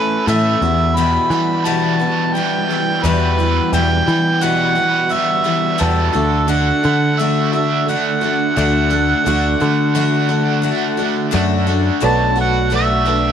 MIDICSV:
0, 0, Header, 1, 6, 480
1, 0, Start_track
1, 0, Key_signature, 1, "minor"
1, 0, Tempo, 692042
1, 669, Time_signature, 4, 2, 24, 8
1, 9239, End_track
2, 0, Start_track
2, 0, Title_t, "Harmonica"
2, 0, Program_c, 0, 22
2, 0, Note_on_c, 0, 71, 98
2, 160, Note_off_c, 0, 71, 0
2, 195, Note_on_c, 0, 76, 85
2, 672, Note_on_c, 0, 83, 99
2, 682, Note_off_c, 0, 76, 0
2, 1148, Note_on_c, 0, 81, 78
2, 1158, Note_off_c, 0, 83, 0
2, 1621, Note_on_c, 0, 79, 85
2, 1632, Note_off_c, 0, 81, 0
2, 2106, Note_on_c, 0, 71, 83
2, 2117, Note_off_c, 0, 79, 0
2, 2586, Note_off_c, 0, 71, 0
2, 2592, Note_on_c, 0, 79, 94
2, 3070, Note_on_c, 0, 78, 87
2, 3080, Note_off_c, 0, 79, 0
2, 3552, Note_on_c, 0, 76, 82
2, 3563, Note_off_c, 0, 78, 0
2, 4032, Note_on_c, 0, 69, 84
2, 4042, Note_off_c, 0, 76, 0
2, 4512, Note_on_c, 0, 78, 93
2, 4523, Note_off_c, 0, 69, 0
2, 4996, Note_on_c, 0, 76, 81
2, 5006, Note_off_c, 0, 78, 0
2, 5216, Note_off_c, 0, 76, 0
2, 5220, Note_on_c, 0, 76, 82
2, 5446, Note_off_c, 0, 76, 0
2, 5476, Note_on_c, 0, 78, 76
2, 7844, Note_off_c, 0, 78, 0
2, 8357, Note_on_c, 0, 81, 104
2, 8575, Note_off_c, 0, 81, 0
2, 8606, Note_on_c, 0, 78, 88
2, 8820, Note_off_c, 0, 78, 0
2, 8844, Note_on_c, 0, 76, 82
2, 9239, Note_off_c, 0, 76, 0
2, 9239, End_track
3, 0, Start_track
3, 0, Title_t, "Upright piano"
3, 0, Program_c, 1, 0
3, 8344, Note_on_c, 1, 69, 81
3, 8346, Note_on_c, 1, 71, 85
3, 8347, Note_on_c, 1, 74, 101
3, 8762, Note_off_c, 1, 69, 0
3, 8763, Note_off_c, 1, 71, 0
3, 8764, Note_off_c, 1, 74, 0
3, 8823, Note_on_c, 1, 69, 66
3, 8824, Note_on_c, 1, 71, 62
3, 8827, Note_on_c, 1, 74, 77
3, 9033, Note_off_c, 1, 69, 0
3, 9034, Note_off_c, 1, 71, 0
3, 9035, Note_off_c, 1, 74, 0
3, 9064, Note_on_c, 1, 69, 58
3, 9064, Note_on_c, 1, 71, 52
3, 9067, Note_on_c, 1, 74, 64
3, 9239, Note_off_c, 1, 69, 0
3, 9239, Note_off_c, 1, 71, 0
3, 9239, Note_off_c, 1, 74, 0
3, 9239, End_track
4, 0, Start_track
4, 0, Title_t, "Twelve-string acoustic guitar"
4, 0, Program_c, 2, 25
4, 0, Note_on_c, 2, 57, 40
4, 0, Note_on_c, 2, 61, 43
4, 0, Note_on_c, 2, 69, 50
4, 189, Note_off_c, 2, 57, 0
4, 189, Note_off_c, 2, 69, 0
4, 193, Note_off_c, 2, 61, 0
4, 193, Note_on_c, 2, 45, 64
4, 197, Note_on_c, 2, 52, 70
4, 197, Note_on_c, 2, 57, 77
4, 201, Note_on_c, 2, 69, 79
4, 203, Note_on_c, 2, 61, 74
4, 429, Note_off_c, 2, 69, 0
4, 431, Note_off_c, 2, 45, 0
4, 431, Note_on_c, 2, 66, 49
4, 433, Note_off_c, 2, 52, 0
4, 433, Note_off_c, 2, 57, 0
4, 436, Note_off_c, 2, 61, 0
4, 440, Note_on_c, 2, 59, 49
4, 449, Note_on_c, 2, 55, 40
4, 453, Note_on_c, 2, 52, 37
4, 667, Note_off_c, 2, 52, 0
4, 669, Note_off_c, 2, 55, 0
4, 670, Note_off_c, 2, 66, 0
4, 671, Note_on_c, 2, 40, 68
4, 674, Note_on_c, 2, 47, 70
4, 675, Note_off_c, 2, 59, 0
4, 675, Note_on_c, 2, 52, 66
4, 677, Note_on_c, 2, 55, 78
4, 682, Note_on_c, 2, 59, 70
4, 683, Note_on_c, 2, 66, 72
4, 900, Note_off_c, 2, 66, 0
4, 904, Note_off_c, 2, 59, 0
4, 908, Note_on_c, 2, 66, 47
4, 910, Note_off_c, 2, 40, 0
4, 910, Note_off_c, 2, 55, 0
4, 911, Note_off_c, 2, 47, 0
4, 912, Note_off_c, 2, 52, 0
4, 912, Note_on_c, 2, 59, 43
4, 918, Note_on_c, 2, 55, 47
4, 921, Note_on_c, 2, 52, 39
4, 1145, Note_off_c, 2, 52, 0
4, 1145, Note_off_c, 2, 55, 0
4, 1146, Note_on_c, 2, 40, 67
4, 1148, Note_off_c, 2, 66, 0
4, 1148, Note_on_c, 2, 47, 70
4, 1150, Note_off_c, 2, 59, 0
4, 1153, Note_on_c, 2, 52, 69
4, 1154, Note_on_c, 2, 55, 81
4, 1157, Note_on_c, 2, 66, 75
4, 1158, Note_on_c, 2, 59, 74
4, 1376, Note_off_c, 2, 66, 0
4, 1384, Note_on_c, 2, 66, 42
4, 1387, Note_off_c, 2, 40, 0
4, 1387, Note_off_c, 2, 59, 0
4, 1388, Note_off_c, 2, 47, 0
4, 1390, Note_off_c, 2, 52, 0
4, 1391, Note_off_c, 2, 55, 0
4, 1395, Note_on_c, 2, 59, 42
4, 1398, Note_on_c, 2, 55, 39
4, 1403, Note_on_c, 2, 52, 35
4, 1621, Note_off_c, 2, 52, 0
4, 1626, Note_off_c, 2, 66, 0
4, 1630, Note_on_c, 2, 52, 54
4, 1631, Note_off_c, 2, 59, 0
4, 1633, Note_off_c, 2, 55, 0
4, 1640, Note_on_c, 2, 55, 54
4, 1646, Note_on_c, 2, 59, 57
4, 1868, Note_off_c, 2, 52, 0
4, 1868, Note_off_c, 2, 59, 0
4, 1873, Note_off_c, 2, 55, 0
4, 1877, Note_on_c, 2, 59, 45
4, 1881, Note_on_c, 2, 55, 39
4, 1889, Note_on_c, 2, 52, 40
4, 2106, Note_off_c, 2, 52, 0
4, 2107, Note_on_c, 2, 40, 74
4, 2110, Note_off_c, 2, 55, 0
4, 2112, Note_off_c, 2, 59, 0
4, 2114, Note_on_c, 2, 47, 80
4, 2114, Note_on_c, 2, 52, 71
4, 2119, Note_on_c, 2, 55, 71
4, 2121, Note_on_c, 2, 59, 69
4, 2121, Note_on_c, 2, 66, 75
4, 2341, Note_off_c, 2, 66, 0
4, 2347, Note_off_c, 2, 40, 0
4, 2350, Note_off_c, 2, 47, 0
4, 2350, Note_off_c, 2, 52, 0
4, 2350, Note_off_c, 2, 55, 0
4, 2350, Note_off_c, 2, 59, 0
4, 2350, Note_on_c, 2, 66, 44
4, 2358, Note_on_c, 2, 59, 49
4, 2359, Note_on_c, 2, 55, 46
4, 2366, Note_on_c, 2, 52, 38
4, 2585, Note_off_c, 2, 52, 0
4, 2586, Note_on_c, 2, 40, 64
4, 2588, Note_off_c, 2, 55, 0
4, 2588, Note_off_c, 2, 66, 0
4, 2589, Note_on_c, 2, 47, 76
4, 2590, Note_off_c, 2, 59, 0
4, 2593, Note_on_c, 2, 52, 80
4, 2596, Note_on_c, 2, 55, 80
4, 2598, Note_on_c, 2, 59, 71
4, 2820, Note_off_c, 2, 59, 0
4, 2826, Note_off_c, 2, 40, 0
4, 2826, Note_off_c, 2, 55, 0
4, 2828, Note_off_c, 2, 47, 0
4, 2828, Note_on_c, 2, 59, 43
4, 2830, Note_off_c, 2, 52, 0
4, 2834, Note_on_c, 2, 55, 44
4, 2838, Note_on_c, 2, 52, 42
4, 3059, Note_off_c, 2, 52, 0
4, 3060, Note_off_c, 2, 55, 0
4, 3061, Note_on_c, 2, 40, 79
4, 3063, Note_off_c, 2, 59, 0
4, 3068, Note_on_c, 2, 47, 69
4, 3068, Note_on_c, 2, 52, 72
4, 3069, Note_on_c, 2, 55, 77
4, 3071, Note_on_c, 2, 59, 79
4, 3074, Note_on_c, 2, 66, 74
4, 3289, Note_off_c, 2, 66, 0
4, 3295, Note_off_c, 2, 59, 0
4, 3297, Note_on_c, 2, 66, 45
4, 3303, Note_off_c, 2, 40, 0
4, 3303, Note_off_c, 2, 55, 0
4, 3304, Note_on_c, 2, 59, 41
4, 3307, Note_off_c, 2, 47, 0
4, 3307, Note_off_c, 2, 52, 0
4, 3312, Note_on_c, 2, 55, 40
4, 3315, Note_on_c, 2, 52, 33
4, 3524, Note_off_c, 2, 52, 0
4, 3530, Note_off_c, 2, 55, 0
4, 3533, Note_on_c, 2, 52, 46
4, 3537, Note_off_c, 2, 59, 0
4, 3538, Note_on_c, 2, 55, 52
4, 3539, Note_off_c, 2, 66, 0
4, 3546, Note_on_c, 2, 59, 54
4, 3547, Note_on_c, 2, 66, 61
4, 3766, Note_off_c, 2, 66, 0
4, 3773, Note_off_c, 2, 59, 0
4, 3774, Note_on_c, 2, 66, 50
4, 3777, Note_off_c, 2, 55, 0
4, 3779, Note_off_c, 2, 52, 0
4, 3781, Note_on_c, 2, 59, 44
4, 3786, Note_on_c, 2, 55, 42
4, 3792, Note_on_c, 2, 52, 41
4, 4007, Note_off_c, 2, 52, 0
4, 4009, Note_off_c, 2, 55, 0
4, 4010, Note_on_c, 2, 40, 77
4, 4012, Note_off_c, 2, 66, 0
4, 4012, Note_on_c, 2, 47, 72
4, 4014, Note_off_c, 2, 59, 0
4, 4015, Note_on_c, 2, 52, 65
4, 4018, Note_on_c, 2, 55, 72
4, 4021, Note_on_c, 2, 66, 70
4, 4023, Note_on_c, 2, 59, 77
4, 4245, Note_off_c, 2, 66, 0
4, 4253, Note_on_c, 2, 66, 53
4, 4258, Note_off_c, 2, 40, 0
4, 4259, Note_off_c, 2, 47, 0
4, 4259, Note_off_c, 2, 59, 0
4, 4260, Note_off_c, 2, 52, 0
4, 4262, Note_off_c, 2, 55, 0
4, 4262, Note_on_c, 2, 62, 48
4, 4270, Note_on_c, 2, 57, 39
4, 4489, Note_off_c, 2, 57, 0
4, 4493, Note_on_c, 2, 50, 76
4, 4494, Note_off_c, 2, 66, 0
4, 4495, Note_off_c, 2, 62, 0
4, 4498, Note_on_c, 2, 57, 73
4, 4503, Note_on_c, 2, 62, 79
4, 4503, Note_on_c, 2, 66, 80
4, 4733, Note_off_c, 2, 66, 0
4, 4739, Note_off_c, 2, 50, 0
4, 4740, Note_off_c, 2, 62, 0
4, 4741, Note_on_c, 2, 66, 52
4, 4742, Note_off_c, 2, 57, 0
4, 4748, Note_on_c, 2, 62, 44
4, 4757, Note_on_c, 2, 57, 40
4, 4983, Note_off_c, 2, 66, 0
4, 4984, Note_off_c, 2, 57, 0
4, 4987, Note_off_c, 2, 62, 0
4, 4989, Note_on_c, 2, 50, 65
4, 4993, Note_on_c, 2, 57, 73
4, 4998, Note_on_c, 2, 62, 76
4, 5001, Note_on_c, 2, 66, 76
4, 5216, Note_off_c, 2, 66, 0
4, 5224, Note_on_c, 2, 66, 44
4, 5226, Note_off_c, 2, 62, 0
4, 5227, Note_off_c, 2, 50, 0
4, 5229, Note_off_c, 2, 57, 0
4, 5234, Note_on_c, 2, 62, 41
4, 5242, Note_on_c, 2, 57, 37
4, 5464, Note_off_c, 2, 57, 0
4, 5465, Note_off_c, 2, 66, 0
4, 5468, Note_on_c, 2, 50, 48
4, 5470, Note_off_c, 2, 62, 0
4, 5473, Note_on_c, 2, 57, 59
4, 5480, Note_on_c, 2, 62, 61
4, 5484, Note_on_c, 2, 66, 61
4, 5687, Note_off_c, 2, 66, 0
4, 5695, Note_on_c, 2, 66, 47
4, 5700, Note_off_c, 2, 62, 0
4, 5707, Note_off_c, 2, 50, 0
4, 5708, Note_on_c, 2, 62, 42
4, 5709, Note_off_c, 2, 57, 0
4, 5718, Note_on_c, 2, 57, 40
4, 5941, Note_off_c, 2, 66, 0
4, 5941, Note_on_c, 2, 50, 72
4, 5942, Note_off_c, 2, 57, 0
4, 5945, Note_off_c, 2, 62, 0
4, 5950, Note_on_c, 2, 57, 72
4, 5953, Note_on_c, 2, 62, 72
4, 5956, Note_on_c, 2, 66, 80
4, 6168, Note_off_c, 2, 66, 0
4, 6175, Note_off_c, 2, 62, 0
4, 6176, Note_on_c, 2, 66, 60
4, 6183, Note_off_c, 2, 57, 0
4, 6183, Note_on_c, 2, 62, 51
4, 6184, Note_off_c, 2, 50, 0
4, 6191, Note_on_c, 2, 57, 46
4, 6420, Note_off_c, 2, 57, 0
4, 6421, Note_off_c, 2, 66, 0
4, 6422, Note_off_c, 2, 62, 0
4, 6423, Note_on_c, 2, 50, 74
4, 6428, Note_on_c, 2, 57, 69
4, 6430, Note_on_c, 2, 62, 80
4, 6434, Note_on_c, 2, 66, 89
4, 6653, Note_off_c, 2, 66, 0
4, 6661, Note_off_c, 2, 62, 0
4, 6661, Note_on_c, 2, 66, 54
4, 6665, Note_off_c, 2, 50, 0
4, 6667, Note_off_c, 2, 57, 0
4, 6669, Note_on_c, 2, 62, 50
4, 6677, Note_on_c, 2, 57, 42
4, 6895, Note_off_c, 2, 57, 0
4, 6900, Note_off_c, 2, 62, 0
4, 6900, Note_on_c, 2, 50, 75
4, 6903, Note_on_c, 2, 57, 80
4, 6904, Note_off_c, 2, 66, 0
4, 6908, Note_on_c, 2, 62, 80
4, 6912, Note_on_c, 2, 66, 84
4, 7127, Note_off_c, 2, 66, 0
4, 7135, Note_off_c, 2, 62, 0
4, 7136, Note_on_c, 2, 66, 52
4, 7143, Note_on_c, 2, 62, 44
4, 7144, Note_off_c, 2, 50, 0
4, 7145, Note_off_c, 2, 57, 0
4, 7153, Note_on_c, 2, 57, 42
4, 7365, Note_on_c, 2, 50, 52
4, 7367, Note_off_c, 2, 57, 0
4, 7367, Note_off_c, 2, 62, 0
4, 7374, Note_off_c, 2, 66, 0
4, 7375, Note_on_c, 2, 57, 63
4, 7376, Note_on_c, 2, 62, 66
4, 7382, Note_on_c, 2, 66, 64
4, 7602, Note_off_c, 2, 66, 0
4, 7610, Note_on_c, 2, 66, 55
4, 7613, Note_off_c, 2, 62, 0
4, 7616, Note_off_c, 2, 50, 0
4, 7621, Note_off_c, 2, 57, 0
4, 7621, Note_on_c, 2, 62, 46
4, 7629, Note_on_c, 2, 57, 39
4, 7842, Note_off_c, 2, 57, 0
4, 7845, Note_off_c, 2, 62, 0
4, 7845, Note_on_c, 2, 50, 77
4, 7847, Note_off_c, 2, 66, 0
4, 7851, Note_on_c, 2, 57, 81
4, 7854, Note_on_c, 2, 62, 84
4, 7856, Note_on_c, 2, 66, 85
4, 8084, Note_off_c, 2, 66, 0
4, 8091, Note_off_c, 2, 62, 0
4, 8092, Note_on_c, 2, 66, 57
4, 8096, Note_off_c, 2, 50, 0
4, 8097, Note_off_c, 2, 57, 0
4, 8099, Note_on_c, 2, 62, 50
4, 8105, Note_on_c, 2, 57, 43
4, 8325, Note_off_c, 2, 57, 0
4, 8326, Note_on_c, 2, 47, 66
4, 8328, Note_off_c, 2, 62, 0
4, 8331, Note_off_c, 2, 66, 0
4, 8331, Note_on_c, 2, 54, 71
4, 8333, Note_on_c, 2, 57, 70
4, 8336, Note_on_c, 2, 62, 74
4, 8340, Note_on_c, 2, 66, 72
4, 8561, Note_off_c, 2, 66, 0
4, 8570, Note_off_c, 2, 62, 0
4, 8570, Note_on_c, 2, 66, 46
4, 8575, Note_off_c, 2, 57, 0
4, 8576, Note_off_c, 2, 47, 0
4, 8578, Note_on_c, 2, 62, 47
4, 8579, Note_off_c, 2, 54, 0
4, 8583, Note_on_c, 2, 57, 40
4, 8807, Note_off_c, 2, 57, 0
4, 8808, Note_on_c, 2, 54, 53
4, 8812, Note_off_c, 2, 62, 0
4, 8815, Note_on_c, 2, 57, 56
4, 8816, Note_off_c, 2, 66, 0
4, 8821, Note_on_c, 2, 62, 59
4, 8824, Note_on_c, 2, 66, 60
4, 9046, Note_off_c, 2, 66, 0
4, 9052, Note_off_c, 2, 62, 0
4, 9054, Note_on_c, 2, 66, 48
4, 9057, Note_off_c, 2, 54, 0
4, 9060, Note_off_c, 2, 57, 0
4, 9060, Note_on_c, 2, 62, 41
4, 9072, Note_on_c, 2, 57, 39
4, 9239, Note_off_c, 2, 57, 0
4, 9239, Note_off_c, 2, 62, 0
4, 9239, Note_off_c, 2, 66, 0
4, 9239, End_track
5, 0, Start_track
5, 0, Title_t, "Overdriven electric guitar"
5, 0, Program_c, 3, 29
5, 0, Note_on_c, 3, 52, 62
5, 0, Note_on_c, 3, 57, 71
5, 0, Note_on_c, 3, 61, 65
5, 0, Note_on_c, 3, 69, 62
5, 174, Note_off_c, 3, 57, 0
5, 416, Note_on_c, 3, 40, 54
5, 426, Note_off_c, 3, 61, 0
5, 427, Note_off_c, 3, 69, 0
5, 649, Note_off_c, 3, 40, 0
5, 1158, Note_off_c, 3, 52, 0
5, 4250, Note_on_c, 3, 50, 55
5, 4487, Note_off_c, 3, 50, 0
5, 5698, Note_on_c, 3, 50, 62
5, 6166, Note_off_c, 3, 50, 0
5, 6174, Note_on_c, 3, 50, 58
5, 6404, Note_off_c, 3, 50, 0
5, 7622, Note_on_c, 3, 50, 60
5, 8104, Note_off_c, 3, 50, 0
5, 8112, Note_on_c, 3, 50, 55
5, 8349, Note_off_c, 3, 50, 0
5, 9239, End_track
6, 0, Start_track
6, 0, Title_t, "Picked electric bass"
6, 0, Program_c, 4, 34
6, 189, Note_on_c, 4, 45, 84
6, 381, Note_off_c, 4, 45, 0
6, 427, Note_on_c, 4, 40, 83
6, 810, Note_off_c, 4, 40, 0
6, 902, Note_on_c, 4, 52, 79
6, 1669, Note_off_c, 4, 52, 0
6, 2106, Note_on_c, 4, 40, 83
6, 2489, Note_off_c, 4, 40, 0
6, 2582, Note_on_c, 4, 40, 77
6, 2775, Note_off_c, 4, 40, 0
6, 2828, Note_on_c, 4, 52, 82
6, 3592, Note_off_c, 4, 52, 0
6, 4029, Note_on_c, 4, 40, 86
6, 4219, Note_off_c, 4, 40, 0
6, 4267, Note_on_c, 4, 38, 86
6, 4649, Note_off_c, 4, 38, 0
6, 4750, Note_on_c, 4, 50, 79
6, 5514, Note_off_c, 4, 50, 0
6, 5945, Note_on_c, 4, 38, 94
6, 6329, Note_off_c, 4, 38, 0
6, 6426, Note_on_c, 4, 38, 88
6, 6618, Note_off_c, 4, 38, 0
6, 6669, Note_on_c, 4, 50, 81
6, 7434, Note_off_c, 4, 50, 0
6, 7864, Note_on_c, 4, 42, 89
6, 8248, Note_off_c, 4, 42, 0
6, 8342, Note_on_c, 4, 35, 90
6, 9239, Note_off_c, 4, 35, 0
6, 9239, End_track
0, 0, End_of_file